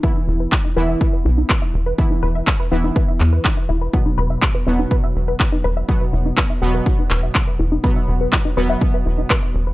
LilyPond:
<<
  \new Staff \with { instrumentName = "Synth arpeggio sound" } { \time 4/4 \key b \phrygian \tempo 4 = 123 b'16 e''16 r16 b'16 e'16 dis'16 b'16 e''16 r16 b'16 e'16 dis'16 b'16 e''16 r16 b'16 | e'16 dis'16 b'16 e''16 r16 b'16 e'16 dis'16 b'16 e''16 r16 b'16 dis'16 e'16 e'16 b'16 | e'16 dis'16 b'16 e''16 r16 b'16 e'16 dis'16 b'16 e''16 r16 b'16 e'16 dis'16 b'16 e''16 | r16 b'16 e'16 dis'16 b'16 e''16 r16 b'16 e'16 dis'16 b'16 e''16 r16 b'16 e'16 dis'16 |
b'16 e''16 r16 b'16 e'16 dis'16 b'16 e''16 r16 b'16 e'16 dis'16 b'16 e''16 r16 b'16 | }
  \new Staff \with { instrumentName = "Synth stab" } { \clef bass \time 4/4 \key b \phrygian <e b e'>4. <e b e'>2~ <e b e'>8 | <e b e'>4. <e b e'>2~ <e b e'>8 | <b, fis b>4. <b, fis b>2~ <b, fis b>8 | <b, fis b>4. <b, fis b>2~ <b, fis b>8 |
<b, fis b>4. <b, fis b>2~ <b, fis b>8 | }
  \new Staff \with { instrumentName = "Analog synth bass" } { \clef bass \time 4/4 \key b \phrygian r8 e,,8 r8 e,,8 r8 b,,8 r8 e,,8 | r8 e,,8 r8 e,,8 r8 e,8 r8 e,,8 | r8 e,,8 r8 e,,8 r8 e,,8 r8 e,,8 | r8 e,,8 r8 e,,8 r8 e,,8 r8 e,,8 |
r8 e,,8 r8 e,,8 r8 e,,8 r8 e,,8 | }
  \new DrumStaff \with { instrumentName = "Drums" } \drummode { \time 4/4 bd4 <hc bd>4 bd4 <hc bd>4 | bd4 <hc bd>4 bd8 hc8 <hc bd>4 | bd4 <hc bd>4 bd4 <hc bd>4 | bd4 <hc bd>4 bd8 hc8 <hc bd>4 |
bd4 <hc bd>4 bd4 <hc bd>4 | }
>>